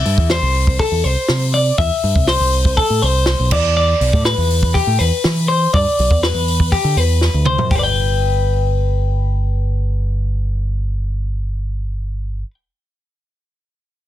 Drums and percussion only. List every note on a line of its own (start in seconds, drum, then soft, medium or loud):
0.05 open hi-hat medium
0.18 kick medium
0.30 snare loud
0.30 open hi-hat medium
0.54 open hi-hat medium
0.67 kick medium
0.79 kick loud
0.79 open hi-hat medium
1.04 open hi-hat medium
1.28 snare loud
1.28 open hi-hat medium
1.53 open hi-hat medium
1.78 kick loud
1.78 open hi-hat medium
2.03 open hi-hat medium
2.16 kick medium
2.27 snare loud
2.27 open hi-hat loud
2.53 open hi-hat medium
2.65 kick medium
2.77 kick loud
2.77 open hi-hat medium
3.02 open hi-hat medium
3.26 snare loud
3.26 open hi-hat medium
3.51 kick loud
3.51 crash loud
4.01 open hi-hat medium
4.13 kick medium
4.25 snare loud
4.25 open hi-hat medium
4.50 open hi-hat medium
4.63 kick medium
4.75 kick medium
4.75 open hi-hat medium
4.99 open hi-hat medium
5.24 snare loud
5.24 open hi-hat medium
5.49 open hi-hat medium
5.74 kick loud
5.74 open hi-hat loud
5.98 open hi-hat medium
6.11 kick medium
6.23 snare loud
6.23 open hi-hat loud
6.48 open hi-hat medium
6.60 kick medium
6.72 kick medium
6.72 open hi-hat loud
6.97 open hi-hat medium
7.21 snare medium
7.45 mid tom loud
7.58 floor tom medium
7.71 kick loud
7.71 open hi-hat medium